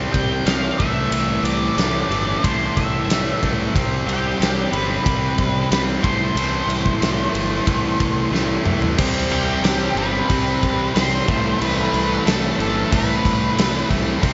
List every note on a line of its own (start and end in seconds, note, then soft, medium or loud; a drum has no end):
0.00 0.45 C3 medium
0.00 0.46 G3 loud
0.00 0.47 C4 medium
0.12 0.39 C2 medium
0.12 0.47 G5 medium
0.12 kick medium
0.12 ride medium
0.45 0.71 C2 medium
0.45 0.79 C3 medium
0.45 0.78 G3 medium
0.45 0.80 C4 medium
0.45 0.78 F5 medium
0.45 snare loud
0.45 ride medium
0.78 1.05 C2 medium
0.78 1.11 A2 medium
0.78 1.12 E3 loud
0.78 1.12 A3 medium
0.78 1.44 E5 loud
0.78 kick loud
0.78 ride medium
1.11 1.37 C2 medium
1.11 1.76 A2 medium
1.11 1.78 E3 loud
1.11 1.77 A3 loud
1.11 ride medium
1.43 1.69 C2 medium
1.43 2.46 D5 medium
1.43 ride medium
1.77 2.02 C2 medium
1.77 2.09 A2 medium
1.77 2.10 E3 medium
1.77 2.10 A3 medium
1.77 snare medium
1.77 ride medium
2.09 2.35 G1 medium
2.09 2.42 A2 medium
2.09 2.43 E3 medium
2.09 2.43 A3 medium
2.09 ride medium
2.43 2.69 C2 medium
2.43 3.09 A2 medium
2.43 3.10 E3 medium
2.43 3.10 A3 medium
2.43 2.77 C5 medium
2.43 kick loud
2.43 ride loud
2.76 3.02 C2 medium
2.76 3.38 E5 medium
2.76 kick medium
2.76 ride medium
3.06 3.32 C2 medium
3.06 3.41 A2 medium
3.06 ride loud
3.11 3.43 E3 medium
3.11 3.43 A3 medium
3.11 snare loud
3.43 3.68 C2 medium
3.43 3.73 A2 medium
3.43 3.75 E3 medium
3.43 3.74 A3 loud
3.43 kick medium
3.43 ride medium
3.75 4.00 C2 loud
3.75 4.40 C3 medium
3.75 4.40 G3 loud
3.75 4.41 C4 medium
3.75 kick loud
3.75 ride medium
4.07 4.32 C2 medium
4.07 4.75 G4 medium
4.07 ride medium
4.40 4.65 C2 medium
4.40 4.73 C3 medium
4.40 4.72 G3 medium
4.40 4.73 C4 medium
4.40 snare loud
4.40 ride medium
4.72 4.97 G1 medium
4.72 5.05 C3 medium
4.72 5.04 G3 medium
4.72 5.06 C4 medium
4.72 5.67 B4 loud
4.72 ride medium
5.05 5.31 C2 medium
5.05 5.71 C3 medium
5.05 5.70 G3 medium
5.05 5.72 C4 medium
5.05 kick loud
5.05 ride loud
5.38 5.64 C2 medium
5.38 kick medium
5.38 ride medium
5.71 5.96 C2 medium
5.71 6.03 C3 medium
5.71 6.02 G3 medium
5.71 6.04 C4 medium
5.71 5.81 B4 loud
5.71 snare loud
5.71 ride loud
6.03 6.29 C2 medium
6.03 6.36 A2 medium
6.03 6.36 E3 medium
6.03 6.36 A3 loud
6.03 8.29 C5 loud
6.03 kick loud
6.03 ride medium
6.35 6.61 C2 medium
6.35 7.00 A2 medium
6.35 7.01 E3 medium
6.35 7.01 A3 loud
6.35 ride medium
6.67 6.93 C2 loud
6.67 ride medium
6.86 kick medium
7.01 7.26 C2 medium
7.01 7.32 A2 medium
7.01 7.33 E3 medium
7.01 7.33 A3 medium
7.01 snare loud
7.01 ride medium
7.33 7.59 G1 medium
7.33 7.65 A2 medium
7.33 7.65 E3 medium
7.33 7.66 A3 medium
7.33 ride medium
7.66 7.92 C2 medium
7.66 8.30 A2 medium
7.66 8.31 E3 medium
7.66 8.31 A3 medium
7.66 kick loud
7.66 ride medium
8.00 8.25 C2 medium
8.00 kick medium
8.00 ride medium
8.31 8.57 C2 medium
8.31 8.63 A2 medium
8.31 8.63 E3 medium
8.31 8.64 A3 medium
8.31 snare medium
8.64 8.91 C2 medium
8.64 8.96 A2 medium
8.64 8.96 E3 medium
8.64 8.96 A3 medium
8.64 mid tom medium
8.82 floor tom medium
8.97 9.24 C2 medium
8.97 9.64 C3 medium
8.97 14.19 E3 medium
8.97 9.63 G3 loud
8.97 9.64 C4 loud
8.97 14.33 C4 medium
8.97 11.26 G4 medium
8.97 kick loud
8.97 crash loud
8.97 crash medium
9.30 9.56 C2 medium
9.30 9.99 G4 medium
9.30 crash medium
9.62 9.88 C2 medium
9.62 9.96 C3 medium
9.62 9.96 G3 loud
9.62 9.97 C4 medium
9.62 snare loud
9.62 crash medium
9.95 10.21 G1 medium
9.95 10.29 C3 medium
9.95 10.29 G3 medium
9.95 10.30 C4 loud
9.95 10.94 B4 loud
9.95 crash medium
10.29 10.55 C2 medium
10.29 10.95 C3 medium
10.29 10.94 G3 loud
10.29 10.96 C4 loud
10.29 kick loud
10.29 crash medium
10.63 10.88 C2 medium
10.63 kick medium
10.63 crash medium
10.95 11.20 C2 medium
10.95 11.28 C3 medium
10.95 11.26 G3 medium
10.95 11.28 C4 medium
10.95 11.61 C5 loud
10.95 snare loud
10.95 crash medium
11.28 11.53 C2 medium
11.28 11.60 A2 loud
11.28 11.61 E3 loud
11.28 11.61 A3 loud
11.28 14.20 A4 medium
11.28 kick loud
11.28 crash medium
11.61 11.86 C2 medium
11.61 12.25 A2 medium
11.61 12.26 E3 loud
11.61 12.25 A3 loud
11.61 12.26 B4 loud
11.61 crash medium
11.93 12.18 C2 loud
11.93 crash medium
12.26 12.51 C2 medium
12.26 12.57 A2 medium
12.26 12.59 E3 medium
12.26 12.59 A3 medium
12.26 12.60 A4 medium
12.26 snare loud
12.26 crash medium
12.58 12.83 G1 loud
12.58 12.90 A2 medium
12.58 12.91 E3 medium
12.58 12.91 A3 loud
12.58 12.93 A4 medium
12.58 crash medium
12.91 13.17 C2 medium
12.91 13.56 A2 medium
12.91 13.57 E3 medium
12.91 13.57 A3 loud
12.91 13.87 B4 medium
12.91 kick loud
12.91 crash medium
13.25 13.49 C2 medium
13.25 kick medium
13.25 crash medium
13.57 13.82 C2 medium
13.57 13.87 A2 medium
13.57 13.89 E3 medium
13.57 13.88 A3 medium
13.57 snare loud
13.57 crash medium
13.88 14.15 C2 loud
13.88 14.20 A2 medium
13.88 14.21 E3 medium
13.88 14.20 A3 medium
13.88 kick medium
13.88 crash medium
14.21 14.33 C2 loud
14.21 14.33 C3 medium
14.21 14.33 E3 medium
14.21 14.33 G3 medium
14.21 14.33 C4 loud
14.21 14.33 G4 medium
14.21 kick loud
14.21 crash medium